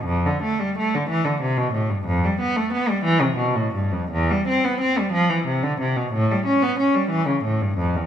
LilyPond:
\new Staff \with { instrumentName = "Cello" } { \clef bass \time 6/8 \key d \dorian \tempo 4. = 61 f,16 d16 a16 g16 a16 d16 e16 d16 c16 b,16 a,16 g,16 | f,16 g16 b16 a16 b16 g16 e16 c16 b,16 a,16 g,16 f,16 | e,16 g16 c'16 b16 c'16 g16 f16 e16 c16 d16 c16 b,16 | a,16 g16 cis'16 b16 cis'16 g16 e16 cis16 a,16 g,16 f,16 e,16 | }